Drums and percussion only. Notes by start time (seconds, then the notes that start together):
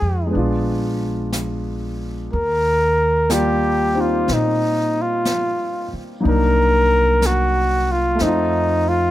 0.35 brush sweep
1.33 brush sweep, snare, hi-hat pedal
2.31 brush sweep
3.30 brush sweep, snare, hi-hat pedal
4.28 brush sweep, snare
5.25 brush sweep, snare, hi-hat pedal
6.23 brush sweep
7.22 brush sweep, snare, hi-hat pedal
8.19 brush sweep, snare